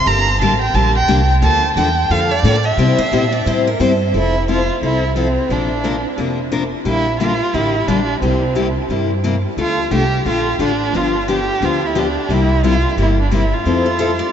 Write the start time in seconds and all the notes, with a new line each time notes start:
0.06 G1 D3 G3 A#3 D4 G4 A#5
0.39 A1 D3 G3 A#3 D4 G4 A5
0.62 G5
0.74 A#1 D3 G3 A#3 D4 G4 A5
0.96 G5
1.08 C2 D3 G3 A#3 D4 G4
1.42 D2 D3 F3 A#3 D4 A4 A5
1.76 E2 D3 F3 A#3 D4 A4 G5
2.10 F2 D3 F3 A#3 D4 A4 F5
2.31 D5
2.43 A2 D3 F3 A#3 D4 A4
2.65 E5
2.77 C3 G3 C4 E4 G4
2.98 C5, muted upright bass stroke
3.12 A#2 C3 G3 C4 E4 G4
3.32 D5
3.46 A2 C3 G3 C4 E4 G4 C5
3.67 A#4
3.79 G2 C3 G3 C4 E4 G4 C5
4.13 F1 F3 C4 E4 A4
4.48 F3 C4 E4 F4 A4
4.82 C2 F3 C4 E4 A4
5.16 F3 C4 E4 A4
5.49 A#1 C3 F3 A#3 D4 A#4
5.84 C3 F3 A#3 D4 A#4
6.17 F1 C3 F3 A#3 D4 A#4
6.52 C3 F3 A#3 D4 A#4
6.85 A#1 D3 G3 A#3 D4 E4 G4
7.20 D3 G3 A#3 D4 F4 G4
7.53 A1 D3 G3 A#3 D4 E4 G4
7.87 A#1 D3 G3 A#3 D4 G4
8.21 C2 C3 G3 A#3 C4 E4 G4
8.55 C3 G3 A#3 E4 G4
8.88 G2 C3 G3 A#3 E4 G4
9.24 C3 G3 A#3 E4 G4
9.57 D2 D3 A3 D4 F4 A4
9.91 C2 D3 A3 D4 F4 G4 A4
10.25 A#1 D3 A3 D4 F4 A4
10.59 A1 D3 A3 D4 F4 A4
10.63 D4
10.93 G1 D3 F3 B3 D4 F4 G4
11.28 D3 F3 B3 D4 G4
11.61 D2 D3 F3 B3 D4 G4
11.65 F4
11.86 E4
11.95 D3 F3 B3 D4 G4
11.99 D4
12.29 C2 C3 G3 A#3 E4 G4
12.34 E4
12.64 C3 G3 A#3 E4 F4 G4
12.97 G1 C3 G3 A#3 E4 G4
13.02 E4
13.20 D4
13.31 C3 G3 A#3 E4 G4
13.54 F4
13.65 F2 F3 C4 E4 A4
13.86 A4
13.99 F3 C4 E4 A4 C5
14.19 D5